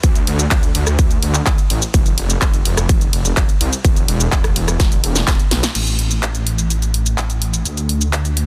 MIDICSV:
0, 0, Header, 1, 3, 480
1, 0, Start_track
1, 0, Tempo, 476190
1, 36, Time_signature, 4, 2, 24, 8
1, 8528, End_track
2, 0, Start_track
2, 0, Title_t, "Detuned saw bass"
2, 0, Program_c, 0, 39
2, 36, Note_on_c, 0, 38, 102
2, 221, Note_off_c, 0, 38, 0
2, 276, Note_on_c, 0, 38, 89
2, 461, Note_off_c, 0, 38, 0
2, 516, Note_on_c, 0, 38, 76
2, 701, Note_off_c, 0, 38, 0
2, 755, Note_on_c, 0, 38, 80
2, 848, Note_off_c, 0, 38, 0
2, 876, Note_on_c, 0, 38, 85
2, 969, Note_off_c, 0, 38, 0
2, 996, Note_on_c, 0, 38, 89
2, 1181, Note_off_c, 0, 38, 0
2, 1235, Note_on_c, 0, 38, 94
2, 1421, Note_off_c, 0, 38, 0
2, 1476, Note_on_c, 0, 38, 94
2, 1569, Note_off_c, 0, 38, 0
2, 1715, Note_on_c, 0, 33, 95
2, 1808, Note_off_c, 0, 33, 0
2, 1956, Note_on_c, 0, 29, 101
2, 2141, Note_off_c, 0, 29, 0
2, 2196, Note_on_c, 0, 29, 88
2, 2381, Note_off_c, 0, 29, 0
2, 2436, Note_on_c, 0, 29, 78
2, 2621, Note_off_c, 0, 29, 0
2, 2677, Note_on_c, 0, 29, 84
2, 2769, Note_off_c, 0, 29, 0
2, 2796, Note_on_c, 0, 29, 83
2, 2889, Note_off_c, 0, 29, 0
2, 2916, Note_on_c, 0, 29, 87
2, 3101, Note_off_c, 0, 29, 0
2, 3157, Note_on_c, 0, 29, 91
2, 3342, Note_off_c, 0, 29, 0
2, 3397, Note_on_c, 0, 29, 94
2, 3489, Note_off_c, 0, 29, 0
2, 3636, Note_on_c, 0, 36, 94
2, 3729, Note_off_c, 0, 36, 0
2, 3876, Note_on_c, 0, 28, 100
2, 4061, Note_off_c, 0, 28, 0
2, 4116, Note_on_c, 0, 28, 89
2, 4301, Note_off_c, 0, 28, 0
2, 4356, Note_on_c, 0, 28, 78
2, 4541, Note_off_c, 0, 28, 0
2, 4596, Note_on_c, 0, 28, 83
2, 4689, Note_off_c, 0, 28, 0
2, 4716, Note_on_c, 0, 28, 81
2, 4809, Note_off_c, 0, 28, 0
2, 4836, Note_on_c, 0, 28, 90
2, 5021, Note_off_c, 0, 28, 0
2, 5076, Note_on_c, 0, 28, 92
2, 5261, Note_off_c, 0, 28, 0
2, 5317, Note_on_c, 0, 28, 97
2, 5409, Note_off_c, 0, 28, 0
2, 5554, Note_on_c, 0, 35, 98
2, 5648, Note_off_c, 0, 35, 0
2, 5795, Note_on_c, 0, 33, 84
2, 7692, Note_off_c, 0, 33, 0
2, 7716, Note_on_c, 0, 38, 89
2, 8528, Note_off_c, 0, 38, 0
2, 8528, End_track
3, 0, Start_track
3, 0, Title_t, "Drums"
3, 35, Note_on_c, 9, 42, 67
3, 35, Note_on_c, 9, 51, 61
3, 36, Note_on_c, 9, 36, 113
3, 36, Note_on_c, 9, 82, 58
3, 135, Note_off_c, 9, 42, 0
3, 135, Note_off_c, 9, 51, 0
3, 136, Note_off_c, 9, 36, 0
3, 136, Note_off_c, 9, 82, 0
3, 156, Note_on_c, 9, 42, 38
3, 156, Note_on_c, 9, 82, 35
3, 256, Note_off_c, 9, 42, 0
3, 257, Note_off_c, 9, 82, 0
3, 275, Note_on_c, 9, 46, 99
3, 275, Note_on_c, 9, 51, 80
3, 376, Note_off_c, 9, 46, 0
3, 376, Note_off_c, 9, 51, 0
3, 394, Note_on_c, 9, 42, 40
3, 395, Note_on_c, 9, 82, 73
3, 495, Note_off_c, 9, 42, 0
3, 496, Note_off_c, 9, 82, 0
3, 514, Note_on_c, 9, 42, 69
3, 514, Note_on_c, 9, 51, 64
3, 515, Note_on_c, 9, 39, 123
3, 515, Note_on_c, 9, 82, 63
3, 516, Note_on_c, 9, 36, 112
3, 615, Note_off_c, 9, 42, 0
3, 615, Note_off_c, 9, 51, 0
3, 616, Note_off_c, 9, 39, 0
3, 616, Note_off_c, 9, 82, 0
3, 617, Note_off_c, 9, 36, 0
3, 635, Note_on_c, 9, 42, 39
3, 636, Note_on_c, 9, 82, 35
3, 735, Note_off_c, 9, 42, 0
3, 736, Note_off_c, 9, 82, 0
3, 755, Note_on_c, 9, 46, 99
3, 755, Note_on_c, 9, 51, 84
3, 856, Note_off_c, 9, 46, 0
3, 856, Note_off_c, 9, 51, 0
3, 875, Note_on_c, 9, 37, 77
3, 875, Note_on_c, 9, 42, 38
3, 876, Note_on_c, 9, 82, 71
3, 976, Note_off_c, 9, 37, 0
3, 976, Note_off_c, 9, 42, 0
3, 977, Note_off_c, 9, 82, 0
3, 995, Note_on_c, 9, 42, 66
3, 995, Note_on_c, 9, 51, 59
3, 996, Note_on_c, 9, 36, 116
3, 996, Note_on_c, 9, 82, 59
3, 1096, Note_off_c, 9, 42, 0
3, 1096, Note_off_c, 9, 51, 0
3, 1097, Note_off_c, 9, 36, 0
3, 1097, Note_off_c, 9, 82, 0
3, 1115, Note_on_c, 9, 42, 38
3, 1116, Note_on_c, 9, 82, 33
3, 1215, Note_off_c, 9, 42, 0
3, 1216, Note_off_c, 9, 82, 0
3, 1235, Note_on_c, 9, 46, 106
3, 1235, Note_on_c, 9, 51, 85
3, 1336, Note_off_c, 9, 46, 0
3, 1336, Note_off_c, 9, 51, 0
3, 1355, Note_on_c, 9, 42, 41
3, 1356, Note_on_c, 9, 39, 37
3, 1356, Note_on_c, 9, 82, 73
3, 1455, Note_off_c, 9, 42, 0
3, 1456, Note_off_c, 9, 39, 0
3, 1456, Note_off_c, 9, 82, 0
3, 1475, Note_on_c, 9, 42, 70
3, 1475, Note_on_c, 9, 51, 61
3, 1476, Note_on_c, 9, 36, 117
3, 1476, Note_on_c, 9, 39, 118
3, 1476, Note_on_c, 9, 82, 63
3, 1576, Note_off_c, 9, 42, 0
3, 1576, Note_off_c, 9, 51, 0
3, 1577, Note_off_c, 9, 36, 0
3, 1577, Note_off_c, 9, 39, 0
3, 1577, Note_off_c, 9, 82, 0
3, 1595, Note_on_c, 9, 42, 38
3, 1596, Note_on_c, 9, 82, 37
3, 1696, Note_off_c, 9, 42, 0
3, 1697, Note_off_c, 9, 82, 0
3, 1715, Note_on_c, 9, 46, 106
3, 1715, Note_on_c, 9, 51, 85
3, 1816, Note_off_c, 9, 46, 0
3, 1816, Note_off_c, 9, 51, 0
3, 1835, Note_on_c, 9, 42, 43
3, 1836, Note_on_c, 9, 82, 76
3, 1936, Note_off_c, 9, 42, 0
3, 1937, Note_off_c, 9, 82, 0
3, 1955, Note_on_c, 9, 42, 73
3, 1955, Note_on_c, 9, 51, 59
3, 1956, Note_on_c, 9, 36, 112
3, 1956, Note_on_c, 9, 82, 60
3, 2056, Note_off_c, 9, 42, 0
3, 2056, Note_off_c, 9, 51, 0
3, 2057, Note_off_c, 9, 36, 0
3, 2057, Note_off_c, 9, 82, 0
3, 2075, Note_on_c, 9, 42, 40
3, 2076, Note_on_c, 9, 82, 35
3, 2176, Note_off_c, 9, 42, 0
3, 2177, Note_off_c, 9, 82, 0
3, 2195, Note_on_c, 9, 46, 102
3, 2195, Note_on_c, 9, 51, 76
3, 2295, Note_off_c, 9, 46, 0
3, 2295, Note_off_c, 9, 51, 0
3, 2315, Note_on_c, 9, 42, 43
3, 2316, Note_on_c, 9, 82, 76
3, 2416, Note_off_c, 9, 42, 0
3, 2417, Note_off_c, 9, 82, 0
3, 2435, Note_on_c, 9, 42, 73
3, 2435, Note_on_c, 9, 51, 61
3, 2436, Note_on_c, 9, 36, 110
3, 2436, Note_on_c, 9, 39, 118
3, 2436, Note_on_c, 9, 82, 61
3, 2536, Note_off_c, 9, 42, 0
3, 2536, Note_off_c, 9, 51, 0
3, 2537, Note_off_c, 9, 36, 0
3, 2537, Note_off_c, 9, 39, 0
3, 2537, Note_off_c, 9, 82, 0
3, 2556, Note_on_c, 9, 42, 41
3, 2557, Note_on_c, 9, 82, 35
3, 2656, Note_off_c, 9, 42, 0
3, 2657, Note_off_c, 9, 82, 0
3, 2676, Note_on_c, 9, 46, 105
3, 2676, Note_on_c, 9, 51, 82
3, 2776, Note_off_c, 9, 46, 0
3, 2776, Note_off_c, 9, 51, 0
3, 2796, Note_on_c, 9, 37, 80
3, 2796, Note_on_c, 9, 42, 42
3, 2797, Note_on_c, 9, 82, 72
3, 2897, Note_off_c, 9, 37, 0
3, 2897, Note_off_c, 9, 42, 0
3, 2898, Note_off_c, 9, 82, 0
3, 2916, Note_on_c, 9, 36, 114
3, 2916, Note_on_c, 9, 42, 67
3, 2916, Note_on_c, 9, 51, 58
3, 2917, Note_on_c, 9, 82, 61
3, 3017, Note_off_c, 9, 36, 0
3, 3017, Note_off_c, 9, 42, 0
3, 3017, Note_off_c, 9, 51, 0
3, 3018, Note_off_c, 9, 82, 0
3, 3036, Note_on_c, 9, 42, 39
3, 3037, Note_on_c, 9, 82, 35
3, 3137, Note_off_c, 9, 42, 0
3, 3138, Note_off_c, 9, 82, 0
3, 3156, Note_on_c, 9, 46, 103
3, 3156, Note_on_c, 9, 51, 85
3, 3257, Note_off_c, 9, 46, 0
3, 3257, Note_off_c, 9, 51, 0
3, 3276, Note_on_c, 9, 42, 41
3, 3277, Note_on_c, 9, 82, 74
3, 3377, Note_off_c, 9, 42, 0
3, 3378, Note_off_c, 9, 82, 0
3, 3396, Note_on_c, 9, 36, 114
3, 3396, Note_on_c, 9, 42, 71
3, 3396, Note_on_c, 9, 51, 59
3, 3397, Note_on_c, 9, 39, 117
3, 3397, Note_on_c, 9, 82, 63
3, 3497, Note_off_c, 9, 36, 0
3, 3497, Note_off_c, 9, 42, 0
3, 3497, Note_off_c, 9, 51, 0
3, 3498, Note_off_c, 9, 39, 0
3, 3498, Note_off_c, 9, 82, 0
3, 3517, Note_on_c, 9, 42, 41
3, 3518, Note_on_c, 9, 82, 38
3, 3618, Note_off_c, 9, 42, 0
3, 3618, Note_off_c, 9, 82, 0
3, 3637, Note_on_c, 9, 46, 104
3, 3637, Note_on_c, 9, 51, 84
3, 3737, Note_off_c, 9, 46, 0
3, 3737, Note_off_c, 9, 51, 0
3, 3757, Note_on_c, 9, 42, 42
3, 3758, Note_on_c, 9, 82, 73
3, 3857, Note_off_c, 9, 42, 0
3, 3858, Note_off_c, 9, 82, 0
3, 3876, Note_on_c, 9, 36, 117
3, 3877, Note_on_c, 9, 42, 73
3, 3877, Note_on_c, 9, 51, 57
3, 3878, Note_on_c, 9, 82, 61
3, 3977, Note_off_c, 9, 36, 0
3, 3977, Note_off_c, 9, 42, 0
3, 3977, Note_off_c, 9, 51, 0
3, 3978, Note_off_c, 9, 82, 0
3, 3996, Note_on_c, 9, 42, 41
3, 3997, Note_on_c, 9, 82, 35
3, 4097, Note_off_c, 9, 42, 0
3, 4098, Note_off_c, 9, 82, 0
3, 4117, Note_on_c, 9, 46, 104
3, 4117, Note_on_c, 9, 51, 76
3, 4217, Note_off_c, 9, 46, 0
3, 4217, Note_off_c, 9, 51, 0
3, 4237, Note_on_c, 9, 42, 43
3, 4237, Note_on_c, 9, 82, 73
3, 4337, Note_off_c, 9, 42, 0
3, 4338, Note_off_c, 9, 82, 0
3, 4356, Note_on_c, 9, 36, 112
3, 4356, Note_on_c, 9, 46, 63
3, 4356, Note_on_c, 9, 51, 59
3, 4357, Note_on_c, 9, 39, 125
3, 4357, Note_on_c, 9, 82, 61
3, 4457, Note_off_c, 9, 36, 0
3, 4457, Note_off_c, 9, 46, 0
3, 4457, Note_off_c, 9, 51, 0
3, 4458, Note_off_c, 9, 39, 0
3, 4458, Note_off_c, 9, 82, 0
3, 4477, Note_on_c, 9, 37, 80
3, 4477, Note_on_c, 9, 42, 42
3, 4478, Note_on_c, 9, 82, 35
3, 4578, Note_off_c, 9, 37, 0
3, 4578, Note_off_c, 9, 42, 0
3, 4579, Note_off_c, 9, 82, 0
3, 4597, Note_on_c, 9, 46, 101
3, 4597, Note_on_c, 9, 51, 79
3, 4698, Note_off_c, 9, 46, 0
3, 4698, Note_off_c, 9, 51, 0
3, 4717, Note_on_c, 9, 37, 79
3, 4717, Note_on_c, 9, 42, 41
3, 4718, Note_on_c, 9, 82, 70
3, 4818, Note_off_c, 9, 37, 0
3, 4818, Note_off_c, 9, 42, 0
3, 4819, Note_off_c, 9, 82, 0
3, 4837, Note_on_c, 9, 36, 114
3, 4837, Note_on_c, 9, 38, 63
3, 4837, Note_on_c, 9, 42, 73
3, 4837, Note_on_c, 9, 51, 57
3, 4838, Note_on_c, 9, 82, 61
3, 4937, Note_off_c, 9, 36, 0
3, 4937, Note_off_c, 9, 38, 0
3, 4937, Note_off_c, 9, 42, 0
3, 4937, Note_off_c, 9, 51, 0
3, 4938, Note_off_c, 9, 82, 0
3, 4957, Note_on_c, 9, 42, 43
3, 4958, Note_on_c, 9, 82, 35
3, 5058, Note_off_c, 9, 42, 0
3, 5059, Note_off_c, 9, 82, 0
3, 5077, Note_on_c, 9, 46, 109
3, 5077, Note_on_c, 9, 51, 79
3, 5178, Note_off_c, 9, 46, 0
3, 5178, Note_off_c, 9, 51, 0
3, 5197, Note_on_c, 9, 38, 73
3, 5197, Note_on_c, 9, 42, 41
3, 5198, Note_on_c, 9, 82, 74
3, 5298, Note_off_c, 9, 38, 0
3, 5298, Note_off_c, 9, 42, 0
3, 5298, Note_off_c, 9, 82, 0
3, 5316, Note_on_c, 9, 36, 114
3, 5317, Note_on_c, 9, 38, 90
3, 5317, Note_on_c, 9, 42, 73
3, 5317, Note_on_c, 9, 51, 59
3, 5318, Note_on_c, 9, 39, 127
3, 5318, Note_on_c, 9, 82, 63
3, 5417, Note_off_c, 9, 36, 0
3, 5418, Note_off_c, 9, 38, 0
3, 5418, Note_off_c, 9, 42, 0
3, 5418, Note_off_c, 9, 51, 0
3, 5419, Note_off_c, 9, 39, 0
3, 5419, Note_off_c, 9, 82, 0
3, 5438, Note_on_c, 9, 42, 42
3, 5439, Note_on_c, 9, 82, 36
3, 5539, Note_off_c, 9, 42, 0
3, 5539, Note_off_c, 9, 82, 0
3, 5557, Note_on_c, 9, 38, 100
3, 5557, Note_on_c, 9, 46, 103
3, 5557, Note_on_c, 9, 51, 80
3, 5658, Note_off_c, 9, 38, 0
3, 5658, Note_off_c, 9, 46, 0
3, 5658, Note_off_c, 9, 51, 0
3, 5677, Note_on_c, 9, 38, 95
3, 5677, Note_on_c, 9, 42, 46
3, 5678, Note_on_c, 9, 82, 75
3, 5777, Note_off_c, 9, 38, 0
3, 5777, Note_off_c, 9, 42, 0
3, 5778, Note_off_c, 9, 82, 0
3, 5797, Note_on_c, 9, 42, 67
3, 5797, Note_on_c, 9, 49, 79
3, 5798, Note_on_c, 9, 82, 51
3, 5898, Note_off_c, 9, 42, 0
3, 5898, Note_off_c, 9, 49, 0
3, 5899, Note_off_c, 9, 82, 0
3, 5917, Note_on_c, 9, 42, 38
3, 5918, Note_on_c, 9, 82, 31
3, 6018, Note_off_c, 9, 42, 0
3, 6019, Note_off_c, 9, 82, 0
3, 6036, Note_on_c, 9, 42, 83
3, 6137, Note_off_c, 9, 42, 0
3, 6157, Note_on_c, 9, 42, 39
3, 6158, Note_on_c, 9, 82, 62
3, 6258, Note_off_c, 9, 42, 0
3, 6259, Note_off_c, 9, 82, 0
3, 6277, Note_on_c, 9, 42, 69
3, 6278, Note_on_c, 9, 39, 122
3, 6278, Note_on_c, 9, 82, 54
3, 6378, Note_off_c, 9, 42, 0
3, 6379, Note_off_c, 9, 39, 0
3, 6379, Note_off_c, 9, 82, 0
3, 6398, Note_on_c, 9, 42, 38
3, 6399, Note_on_c, 9, 82, 31
3, 6499, Note_off_c, 9, 42, 0
3, 6499, Note_off_c, 9, 82, 0
3, 6517, Note_on_c, 9, 42, 85
3, 6618, Note_off_c, 9, 42, 0
3, 6637, Note_on_c, 9, 42, 37
3, 6638, Note_on_c, 9, 82, 62
3, 6738, Note_off_c, 9, 42, 0
3, 6739, Note_off_c, 9, 82, 0
3, 6757, Note_on_c, 9, 42, 63
3, 6758, Note_on_c, 9, 82, 50
3, 6858, Note_off_c, 9, 42, 0
3, 6859, Note_off_c, 9, 82, 0
3, 6877, Note_on_c, 9, 42, 38
3, 6878, Note_on_c, 9, 82, 31
3, 6978, Note_off_c, 9, 42, 0
3, 6979, Note_off_c, 9, 82, 0
3, 6997, Note_on_c, 9, 42, 87
3, 7098, Note_off_c, 9, 42, 0
3, 7117, Note_on_c, 9, 42, 38
3, 7117, Note_on_c, 9, 82, 64
3, 7217, Note_off_c, 9, 42, 0
3, 7218, Note_off_c, 9, 82, 0
3, 7236, Note_on_c, 9, 42, 62
3, 7237, Note_on_c, 9, 39, 117
3, 7237, Note_on_c, 9, 82, 53
3, 7337, Note_off_c, 9, 42, 0
3, 7338, Note_off_c, 9, 39, 0
3, 7338, Note_off_c, 9, 82, 0
3, 7356, Note_on_c, 9, 42, 39
3, 7357, Note_on_c, 9, 82, 31
3, 7457, Note_off_c, 9, 42, 0
3, 7458, Note_off_c, 9, 82, 0
3, 7476, Note_on_c, 9, 42, 91
3, 7577, Note_off_c, 9, 42, 0
3, 7596, Note_on_c, 9, 42, 40
3, 7597, Note_on_c, 9, 82, 65
3, 7697, Note_off_c, 9, 42, 0
3, 7698, Note_off_c, 9, 82, 0
3, 7716, Note_on_c, 9, 42, 62
3, 7717, Note_on_c, 9, 82, 51
3, 7816, Note_off_c, 9, 42, 0
3, 7817, Note_off_c, 9, 82, 0
3, 7836, Note_on_c, 9, 42, 36
3, 7837, Note_on_c, 9, 82, 30
3, 7937, Note_off_c, 9, 42, 0
3, 7938, Note_off_c, 9, 82, 0
3, 7956, Note_on_c, 9, 42, 83
3, 8056, Note_off_c, 9, 42, 0
3, 8076, Note_on_c, 9, 42, 37
3, 8077, Note_on_c, 9, 82, 63
3, 8176, Note_off_c, 9, 42, 0
3, 8177, Note_off_c, 9, 82, 0
3, 8196, Note_on_c, 9, 39, 118
3, 8196, Note_on_c, 9, 42, 65
3, 8197, Note_on_c, 9, 82, 51
3, 8296, Note_off_c, 9, 42, 0
3, 8297, Note_off_c, 9, 39, 0
3, 8297, Note_off_c, 9, 82, 0
3, 8316, Note_on_c, 9, 42, 37
3, 8317, Note_on_c, 9, 82, 29
3, 8417, Note_off_c, 9, 42, 0
3, 8418, Note_off_c, 9, 82, 0
3, 8436, Note_on_c, 9, 42, 86
3, 8528, Note_off_c, 9, 42, 0
3, 8528, End_track
0, 0, End_of_file